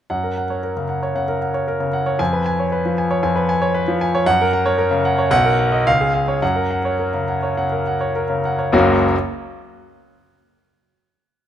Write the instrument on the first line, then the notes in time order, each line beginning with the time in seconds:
grand piano
0.10 F#2 F#5
0.24 A#4
0.37 F#5
0.50 C#5
0.63 A#4
0.77 C#3
0.89 F#5
1.03 C#5
1.15 C#3 F#5
1.28 A#4
1.42 F#5
1.54 C#5
1.68 A#4
1.80 C#3
1.93 F#5
2.06 C#5
2.19 F2 G#5
2.33 B4
2.46 G#5
2.59 C#5
2.72 B4
2.85 F3
2.98 G#5
3.11 C#5
3.23 F2 G#5
3.36 B4
3.49 G#5
3.62 C#5
3.74 B4
3.88 F3
4.01 G#5
4.15 C#5
4.26 F#2 F#5
4.41 A#4
4.53 F#5
4.66 C#5
4.78 A#4
4.91 C#3
5.05 F#5
5.19 C#5
5.31 B1 F#5
5.45 A#4
5.59 F#5
5.72 D#5
5.87 C#2 F5
6.01 G#4
6.14 F5
6.28 C#5
6.42 F#2 F#5
6.56 A#4
6.71 F#5
6.85 C#5
6.99 A#4
7.14 C#3
7.28 F#5
7.43 C#5
7.57 C#3 F#5
7.72 A#4
7.87 F#5
8.01 C#5
8.16 A#4
8.30 C#3
8.45 F#5
8.59 C#5
8.72 F#1 C#2 F#3 A#3 C#4 F#4